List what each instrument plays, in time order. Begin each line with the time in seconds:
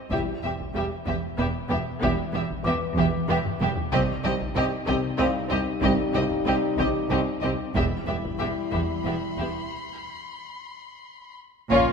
Already playing: felt piano C5 C6
0.11 double bass section E1, cello section E2, viola section G3, french horn section G3 E4, violin section G4 E5, taiko
0.43 double bass section E1, cello section E2, viola section G3, violin section G4 E5
0.60 taiko
0.74 double bass section E1, cello section E2, viola section G3, violin section G4 E5
1.06 double bass section E1, cello section E2, viola section B3, violin section G4 E5, taiko
1.38 double bass section E1, cello section E2, viola section B3, violin section G4 E5
1.69 double bass section E1, cello section E2 E3, viola section B3, violin section G4 E5, taiko low
2.01 double bass section E1, cello section E2, french horn section G3 E4, viola section B3, violin section G4 E5, taiko
2.33 double bass section E1, cello section E2, viola section B3, violin section G4 E5
2.51 taiko
2.63 double bass section E1, cello section E2, viola section B3, violin section G4 E5, felt piano B4 D6
2.97 double bass section E1, cello section E2, viola section B3, violin section G4 E5, taiko
3.28 double bass section E1, cello section E2, viola section B3, violin section G4 E5
3.46 taiko low-mid
3.61 double bass section E1, cello section E2 E3, viola section B3, violin section G4 E5, taiko high
3.77 taiko low
3.92 cello section C2 C3, double bass section C2, french horn section G3 D#4, viola section C4, violin section G4 D#5, taiko
4.24 double bass section C2, cello section C2 C3, viola section C4, violin section G4 D#5
4.41 taiko
4.55 cello section C2 C3, double bass section C2, viola section C4, violin section G4 D#5
4.87 double bass section C2, cello section C2 C3, viola section C4, violin section G4 D#5, taiko
5.18 double bass section C2, cello section C2 C3, viola section C4, violin section G4 D#5, felt piano F5
5.49 cello section C2 C4, double bass section C2, viola section C4, violin section G4 D#5, taiko low
5.81 double bass section C2, cello section C2 C3, viola section C4, violin section G4 D#5, taiko
6.14 cello section C2 C3, double bass section C2, viola section C4, violin section G4 D#5
6.31 taiko
6.46 cello section C2 C3, double bass section C2, viola section C4, violin section G4 D#5
6.78 cello section C2 C3, double bass section C2, viola section C4, violin section G4 D#5, felt piano D6, taiko
7.10 cello section C2 C3, double bass section C2, viola section C4, violin section G4 D#5
7.41 cello section C2 C4, double bass section C2, viola section C4, violin section G4 D#5, taiko low
7.74 double bass section E1, cello section E2, french horn section G3 E4, viola section B3, violin section G4 E5 B5, taiko
8.06 double bass section E1, cello section E2, viola section B3, violin section G4 E5
8.25 taiko
8.39 double bass section E1, cello section E2, viola section B3, violin section G4 E5 C6
8.71 double bass section E1, cello section E2, viola section B3, violin section G4 E5, taiko
9.05 double bass section E1, cello section E2, viola section B3, violin section G4 E5
9.37 double bass section E1, cello section E2 E3, viola section B3, violin section G4 E5, taiko low
11.69 double bass section A#1, cello section A#2, french horn section A#3 C#4, viola section C#4, violin section F4 C#5, taiko, impact